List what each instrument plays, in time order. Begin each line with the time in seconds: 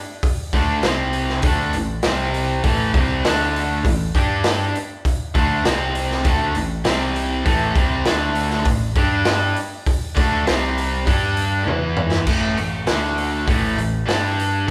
0.23 kick, open hi-hat
0.53 picked electric bass D2, overdriven electric guitar D3 A3 D4, kick, open hi-hat
0.83 picked electric bass C2, overdriven electric guitar C3 G3 C4, snare, open hi-hat
1.13 open hi-hat
1.29 snare
1.42 picked electric bass D2, overdriven electric guitar D3 A3 D4, kick, open hi-hat
1.73 picked electric bass A1, overdriven electric guitar A2 E3, open hi-hat
2.03 picked electric bass C2, overdriven electric guitar C3 G3 C4, snare, open hi-hat
2.34 open hi-hat
2.63 picked electric bass A1, overdriven electric guitar A2 E3 A3, kick, open hi-hat
2.94 picked electric bass C2, overdriven electric guitar C3 G3 C4, kick, open hi-hat
3.23 picked electric bass D2, overdriven electric guitar D3 A3 D4, snare, open hi-hat
3.56 open hi-hat
3.84 picked electric bass A1, overdriven electric guitar A2 E3, kick, open hi-hat
4.15 picked electric bass G2, overdriven electric guitar G3 D4 G4, kick, open hi-hat
4.44 snare, open hi-hat
4.75 open hi-hat
5.05 kick, open hi-hat
5.35 picked electric bass D2, overdriven electric guitar D3 A3 D4, kick, open hi-hat
5.64 picked electric bass C2, overdriven electric guitar C3 G3 C4, snare, open hi-hat
5.95 open hi-hat
6.11 snare
6.24 picked electric bass D2, overdriven electric guitar D3 A3 D4, kick, open hi-hat
6.55 picked electric bass A1, overdriven electric guitar A2 E3, open hi-hat
6.84 picked electric bass C2, overdriven electric guitar C3 G3 C4, snare, open hi-hat
7.16 open hi-hat
7.44 picked electric bass A1, overdriven electric guitar A2 E3 A3, kick, open hi-hat
7.75 picked electric bass C2, overdriven electric guitar C3 G3 C4, kick, open hi-hat
8.05 picked electric bass D2, overdriven electric guitar D3 A3 D4, snare, open hi-hat
8.35 open hi-hat
8.50 snare
8.65 picked electric bass A1, overdriven electric guitar A2 E3, kick, open hi-hat
8.95 picked electric bass G2, overdriven electric guitar G3 D4 G4, kick, open hi-hat
9.25 snare, open hi-hat
9.56 open hi-hat
9.87 kick, open hi-hat
10.15 picked electric bass D2, overdriven electric guitar D3 A3 D4, kick, open hi-hat
10.46 picked electric bass C2, overdriven electric guitar C3 G3 C4, snare, open hi-hat
10.78 open hi-hat
11.06 picked electric bass G2, overdriven electric guitar G3 D4 G4, kick, open hi-hat
11.37 open hi-hat
11.65 picked electric bass E2, overdriven electric guitar E3 B3 E4, high tom
11.97 mid tom
12.12 snare
12.26 picked electric bass A1, overdriven electric guitar A2 E3 A3, kick, crash
12.57 picked electric bass A1, overdriven electric guitar A2 E3, open hi-hat
12.87 picked electric bass D2, overdriven electric guitar D3 A3 D4, snare, open hi-hat
13.18 open hi-hat
13.47 picked electric bass A1, overdriven electric guitar A2 E3 A3, kick, open hi-hat
13.76 picked electric bass A1, overdriven electric guitar A2 E3, open hi-hat
14.06 picked electric bass G2, overdriven electric guitar G3 D4 G4, snare, open hi-hat
14.40 open hi-hat
14.67 overdriven electric guitar D3